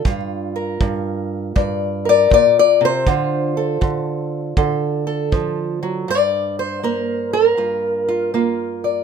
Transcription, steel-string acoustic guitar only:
0.05 0.80 G2 medium
0.05 3.07 F4 soft
0.56 2.04 A#4 medium
0.81 1.54 G2 medium
1.56 2.30 G2 medium
1.56 2.09 D5 soft
2.05 3.03 A#4 medium
2.05 2.32 D5 medium
2.30 2.80 A#2 medium
2.30 2.57 D5 loud
2.59 2.83 D5 medium
2.81 3.06 C3 medium
2.85 5.09 C5 loud
3.07 3.80 D3 medium
3.07 6.05 F4 medium
3.57 4.57 A4 medium
3.81 4.56 D3 medium
4.57 6.04 D3 medium
4.57 5.06 A4 soft
5.07 6.04 A4 medium
5.32 5.82 F3 medium
5.83 6.08 F#3 medium
6.08 7.56 G2 medium
6.08 6.58 D5 medium
6.59 7.59 C5 medium
6.83 8.33 A#3 medium
6.83 7.32 A#4 medium
7.33 9.04 A#4 medium
7.57 9.04 G2 medium
7.57 8.07 F4 soft
8.09 8.34 F4 soft
8.34 9.04 A#3 medium
8.34 9.04 F4 soft
8.84 9.04 D5 soft

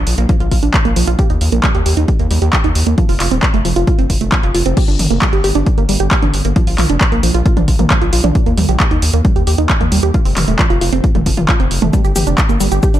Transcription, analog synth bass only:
0.07 0.15 A#1 loud
0.18 0.26 A#1 medium
0.40 0.48 A#1 medium
0.52 0.60 A#1 loud
0.63 0.71 A#1 medium
0.85 0.93 A#1 medium
0.96 1.04 A#1 loud
1.07 1.16 A#1 medium
1.30 1.38 D#2 medium
1.41 1.49 D#2 loud
1.52 1.60 A#1 medium
1.75 1.83 D#2 medium
1.86 1.94 D#2 loud
1.97 2.05 D#2 medium
2.19 2.27 D#2 medium
2.31 2.39 D#2 loud
2.42 2.50 D#2 medium
2.64 2.72 D#2 medium
2.75 2.83 D#2 loud
2.87 2.95 D#2 medium
3.09 3.17 F1 medium
3.20 3.28 F1 loud
3.31 3.39 D#1 medium
3.54 3.62 F1 medium
3.65 3.73 F1 loud
3.76 3.84 F1 medium
3.99 4.07 F1 medium
4.10 4.18 F1 medium
4.21 4.29 F1 medium
4.43 4.51 F1 medium
4.55 4.63 F1 loud
4.66 4.74 F1 medium
4.88 4.96 G1 medium
4.99 5.07 G1 loud
5.11 5.19 F1 medium
5.33 5.41 G1 medium
5.44 5.52 G1 loud
5.55 5.63 G1 medium
5.78 5.86 G1 medium
5.89 5.97 G1 loud
6.00 6.08 G1 medium
6.22 6.30 G1 medium
6.34 6.42 G1 loud
6.45 6.53 G1 medium
6.67 6.75 A#1 medium
6.78 6.86 A#1 loud
6.90 6.98 F1 medium
7.12 7.20 A#1 medium
7.23 7.31 A#1 loud
7.34 7.42 A#1 medium
7.57 7.65 A#1 medium
7.68 7.76 A#1 loud
7.79 7.87 A#1 medium
8.02 8.10 A#1 medium
8.13 8.21 A#1 loud
8.24 8.32 A#1 medium
8.46 8.54 D#2 medium
8.57 8.65 D#2 loud
8.69 8.77 A#1 medium
8.91 8.99 D#2 medium
9.02 9.10 D#2 loud
9.13 9.21 D#2 medium
9.36 9.44 D#2 medium
9.47 9.55 D#2 loud
9.58 9.66 D#2 medium
9.81 9.89 D#2 medium
9.92 10.00 D#2 medium
10.03 10.11 D#2 medium
10.25 10.33 F1 medium
10.37 10.45 F1 loud
10.48 10.56 D#1 medium
10.70 10.78 F1 medium
10.81 10.89 F1 loud
10.93 11.01 F1 medium
11.15 11.23 D#1 medium
11.26 11.34 F1 loud
11.37 11.45 F1 medium
11.60 11.68 F1 medium
11.71 11.79 F1 loud
11.82 11.90 F1 medium
12.04 12.13 G1 medium
12.16 12.24 G1 loud
12.27 12.35 F1 medium
12.49 12.57 G1 medium
12.60 12.68 G1 loud
12.72 12.80 G1 medium
12.94 13.00 G1 medium

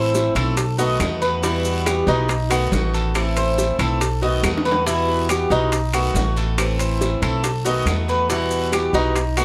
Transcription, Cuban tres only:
0.00 0.35 C5 medium
0.36 0.78 A4 medium
0.79 1.21 D#5 medium
1.22 1.43 B4 medium
1.44 1.85 E4 medium
1.87 2.07 G4 medium
2.08 2.50 D#4 medium
2.51 2.93 F#4 medium
2.94 3.35 A4 medium
3.37 3.78 C5 medium
3.80 4.21 A4 medium
4.23 4.64 D#5 medium
4.65 4.86 B4 medium
4.86 5.28 E4 medium
5.30 5.50 G4 medium
5.51 5.93 D#4 medium
5.94 6.36 F#4 medium
6.37 6.78 A4 medium
6.80 7.21 C5 medium
7.23 7.64 A4 medium
7.66 8.07 D#5 medium
8.09 8.30 B4 medium
8.30 8.72 E4 medium
8.73 8.94 G4 medium
8.95 9.36 D#4 medium
9.37 9.45 F#4 medium

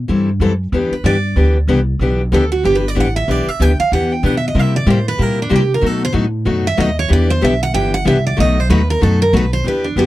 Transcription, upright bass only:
0.09 0.39 G2 medium
0.40 0.71 F#2 medium
0.72 0.90 E2 medium
0.91 muted upright bass stroke soft
1.04 1.35 G2 medium
1.36 1.67 D2 medium
1.68 1.99 C2 medium
1.99 2.31 B1 medium
2.32 2.63 D2 loud
2.64 2.95 G1 medium
2.97 3.28 A1 medium
3.28 3.46 B1 medium
3.48 muted upright bass stroke soft
3.60 3.77 D2 medium
3.80 muted upright bass stroke soft
3.92 4.22 E2 medium
4.23 4.54 B2 medium
4.55 4.86 C3 medium
4.86 5.18 A2 loud
5.19 5.50 A#2 medium
5.51 5.82 C3 medium
5.82 6.13 B2 medium
6.14 6.45 A2 medium
6.46 6.77 F#2 medium
6.78 7.09 D#2 loud
7.10 7.42 E2 medium
7.42 7.74 B1 medium
7.74 8.05 G1 medium
8.05 8.37 C2 loud
8.38 8.69 B1 medium
8.69 9.01 D#2 loud
9.02 9.33 F#2 loud
9.33 9.64 B1 loud
9.64 9.95 E2 medium
9.96 10.06 F#2 medium

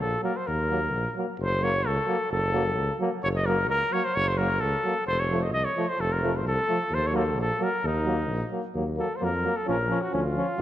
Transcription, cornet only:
0.01 0.22 A4 loud
0.24 0.38 A#4 medium
0.37 0.48 C5 medium
0.47 1.16 A#4 medium
1.43 1.65 C5 loud
1.63 1.88 C#5 loud
1.87 2.31 A4 loud
2.32 2.96 A4 loud
3.23 3.29 C#5 loud
3.36 3.47 D#5 medium
3.46 3.68 A#4 loud
3.70 3.95 A#4 loud
3.93 4.06 C#5 loud
4.05 4.16 C5 loud
4.15 4.29 C#5 loud
4.28 4.39 C5 medium
4.38 4.62 A#4 loud
4.60 5.06 A4 loud
5.07 5.21 C5 loud
5.20 5.44 C#5 loud
5.43 5.52 D#5 medium
5.53 5.66 D#5 loud
5.65 5.90 C#5 medium
5.88 6.02 C5 loud
6.00 6.14 A4 loud
6.12 6.38 A#4 medium
6.37 6.46 C5 medium
6.47 6.96 A4 loud
6.94 7.08 C5 loud
7.07 7.18 C#5 medium
7.16 7.38 A4 medium
7.41 7.65 A4 loud
7.63 7.88 A#4 medium
7.86 8.54 D#4 medium
9.00 9.18 A4 medium
9.16 9.26 C5 medium
9.24 9.58 A#4 medium
9.56 9.69 A4 medium
9.70 10.03 A#4 medium
10.01 10.14 F#4 medium
10.14 10.62 F4 medium

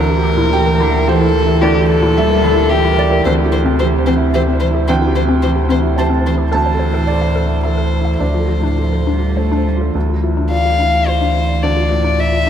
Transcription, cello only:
0.00 0.52 E3 medium
0.53 0.82 E3 medium
0.80 1.07 D3 medium
1.08 1.34 E3 medium
1.35 2.18 E3 medium
2.17 2.46 G3 medium
2.44 2.74 D3 medium
2.72 3.25 E3 medium
3.26 3.34 E3 medium
3.53 3.61 E3 medium
3.80 3.88 E3 medium
4.06 4.14 E3 medium
4.33 4.41 E3 medium
4.60 4.68 E3 medium
4.87 4.95 E3 medium
5.15 5.23 E3 medium
5.43 5.51 E3 medium
5.70 5.78 E3 medium
5.98 6.06 E3 medium
6.26 6.34 E3 medium
6.53 7.60 E3 medium
7.64 8.23 E3 soft
8.22 8.73 F3 soft
8.79 9.06 F3 medium
9.08 9.39 G3 medium
9.38 9.68 A3 medium
9.67 9.95 G3 soft
9.95 12.50 E3 soft

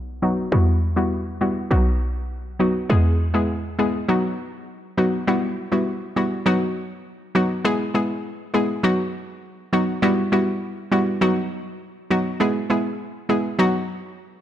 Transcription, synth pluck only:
0.22 0.35 F#3 medium
0.22 0.35 B3 medium
0.22 0.35 D#4 medium
0.22 0.35 F#4 medium
0.52 0.65 G3 medium
0.52 0.65 B3 medium
0.52 0.65 E4 medium
0.52 0.65 F#4 loud
0.96 1.38 G3 medium
0.96 1.38 B3 medium
0.96 1.38 E4 medium
0.96 1.38 F#4 medium
1.41 1.68 G3 medium
1.41 1.68 B3 medium
1.41 1.69 E4 medium
1.41 1.69 F#4 medium
1.71 2.25 F#3 medium
1.71 2.26 B3 medium
1.71 2.26 D#4 medium
1.71 2.26 F#4 loud
2.59 2.72 F#3 medium
2.59 2.73 B3 medium
2.59 2.73 D#4 medium
2.59 2.73 F#4 medium
2.89 3.02 G#3 medium
2.89 3.02 B3 medium
2.89 3.03 E4 medium
2.89 3.03 G#4 loud
3.34 3.75 G#3 medium
3.34 3.75 B3 medium
3.34 3.75 E4 medium
3.34 3.75 G#4 medium
3.79 4.06 G#3 medium
3.79 4.06 B3 medium
3.79 4.06 E4 medium
3.79 4.06 G#4 medium
4.08 4.63 F#3 medium
4.08 4.63 B3 medium
4.08 4.63 D#4 medium
4.08 4.63 F#4 loud
4.98 5.10 F#3 medium
4.98 5.10 B3 medium
4.98 5.11 D#4 medium
4.98 5.11 F#4 medium
5.27 5.40 G3 medium
5.27 5.40 B3 medium
5.27 5.40 E4 medium
5.27 5.40 F#4 loud
5.72 6.13 G3 medium
5.72 6.13 B3 medium
5.72 6.13 E4 medium
5.72 6.13 F#4 medium
6.16 6.44 G3 medium
6.16 6.44 B3 medium
6.16 6.44 E4 medium
6.16 6.44 F#4 medium
6.46 7.01 F#3 loud
6.46 7.01 B3 medium
6.46 7.01 D#4 medium
6.46 7.01 F#4 loud
7.35 7.48 F#3 medium
7.35 7.48 B3 medium
7.35 7.48 D#4 medium
7.35 7.48 F#4 medium
7.65 7.92 G#3 medium
7.65 7.92 B3 medium
7.65 7.92 E4 medium
7.65 7.92 G#4 loud
7.94 8.07 G#3 medium
7.94 8.07 B3 medium
7.94 8.07 E4 medium
7.94 8.08 G#4 medium
8.54 8.67 G#3 medium
8.54 8.67 B3 medium
8.54 8.67 E4 medium
8.54 8.67 G#4 medium
8.83 9.38 F#3 loud
8.83 9.38 B3 medium
8.83 9.38 D#4 medium
8.83 9.39 F#4 loud
9.73 9.86 F#3 medium
9.73 9.86 B3 medium
9.73 9.86 D#4 medium
9.73 9.86 F#4 medium
10.02 10.30 G3 loud
10.02 10.30 B3 medium
10.02 10.30 E4 medium
10.02 10.30 F#4 loud
10.32 10.45 G3 medium
10.32 10.45 B3 medium
10.32 10.45 E4 medium
10.32 10.45 F#4 medium
10.91 11.04 G3 medium
10.91 11.04 B3 medium
10.91 11.05 E4 medium
10.91 11.05 F#4 medium
11.21 11.76 F#3 loud
11.21 11.76 B3 medium
11.21 11.76 D#4 medium
11.21 11.76 F#4 loud
12.10 12.23 F#3 medium
12.10 12.23 B3 medium
12.10 12.23 D#4 medium
12.10 12.23 F#4 medium
12.40 12.67 G#3 loud
12.40 12.68 B3 medium
12.40 12.68 E4 medium
12.40 12.68 G#4 loud
12.70 12.83 G#3 medium
12.70 12.83 B3 medium
12.70 12.83 E4 medium
12.70 12.83 G#4 medium
13.29 13.42 G#3 medium
13.29 13.42 B3 medium
13.29 13.42 E4 medium
13.29 13.42 G#4 medium
13.59 14.14 F#3 loud
13.59 14.14 B3 medium
13.59 14.14 D#4 medium
13.59 14.14 F#4 loud

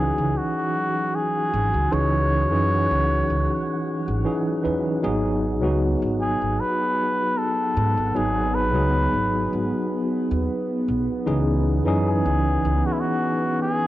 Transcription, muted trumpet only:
0.00 0.39 G#4 medium
0.37 1.17 F#4 loud
1.15 1.95 G#4 loud
1.93 4.26 C#5 loud
6.21 6.61 G#4 medium
6.60 7.39 B4 loud
7.38 8.18 A4 loud
8.16 8.56 G#4 loud
8.55 9.71 B4 loud
12.07 12.87 G#4 medium
12.85 12.94 F#4 medium
12.92 13.01 E4 medium
13.00 13.62 F#4 loud
13.62 13.87 G#4 loud

